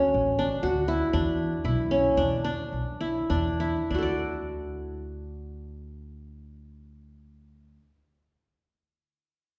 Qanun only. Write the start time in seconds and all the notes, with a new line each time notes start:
Already playing: C#4 F#4
0.39 D4
0.63 F#4
0.88 E4
1.13 D4
1.65 E4
1.91 C#4
2.17 D4
2.44 D4
3.01 E4
3.30 D4
3.60 E4
3.91 D4 F#4
3.98 A4
4.02 D5